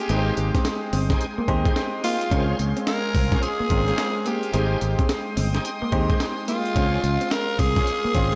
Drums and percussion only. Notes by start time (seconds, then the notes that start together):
0.09 closed hi-hat, tambourine
0.37 closed hi-hat, tambourine
0.55 kick, snare, closed hi-hat
0.65 snare, closed hi-hat, tambourine
0.93 open hi-hat, tambourine
1.10 kick, snare, closed hi-hat
1.21 closed hi-hat, tambourine
1.48 kick, closed hi-hat
1.65 kick, closed hi-hat
1.76 snare, closed hi-hat, tambourine
2.04 open hi-hat, tambourine
2.21 closed hi-hat
2.31 kick, closed hi-hat, tambourine
2.59 closed hi-hat, tambourine
2.77 closed hi-hat
2.87 snare, closed hi-hat, tambourine
3.15 kick, open hi-hat, tambourine
3.32 kick, snare, closed hi-hat
3.43 closed hi-hat, tambourine
3.70 kick, closed hi-hat
3.88 closed hi-hat
3.98 snare, closed hi-hat, tambourine
4.26 closed hi-hat, tambourine
4.43 closed hi-hat
4.53 closed hi-hat, tambourine
4.81 closed hi-hat, tambourine
4.99 kick, closed hi-hat
5.09 snare, closed hi-hat, tambourine
5.37 open hi-hat, tambourine
5.54 snare, closed hi-hat
5.65 closed hi-hat, tambourine
5.92 kick, closed hi-hat
6.10 kick, closed hi-hat
6.20 snare, closed hi-hat, tambourine
6.48 closed hi-hat, tambourine
6.66 closed hi-hat
6.76 kick, closed hi-hat, tambourine
7.03 closed hi-hat, tambourine
7.21 closed hi-hat
7.31 snare, closed hi-hat, tambourine
7.59 kick, open hi-hat, tambourine
7.76 kick, snare, closed hi-hat
7.87 closed hi-hat, tambourine
8.14 kick, closed hi-hat